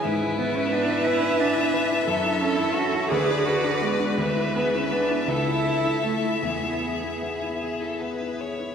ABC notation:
X:1
M:6/8
L:1/16
Q:3/8=55
K:Emix
V:1 name="Violin"
e12- | e6 d6 | e12- | e8- e2 z2 |]
V:2 name="Viola"
B12 | A6 B6- | B6 A6 | G8- G2 z2 |]
V:3 name="Violin"
E6 G6 | A6 B6 | B6 A6 | G6 G A B2 c2 |]
V:4 name="Grand piano"
G,, E B E B, E B E B, E B E | F,, E A E C E D,, D A D B, D | D,, E G E B, E C,, E A E A, E | E,, E G E B, E G E B, E G E |]
V:5 name="Cello"
z2 B, C D2 E2 D4 | z2 C E F2 G2 F2 G,2- | G,2 B, C D2 E4 A,2 | B,6 z6 |]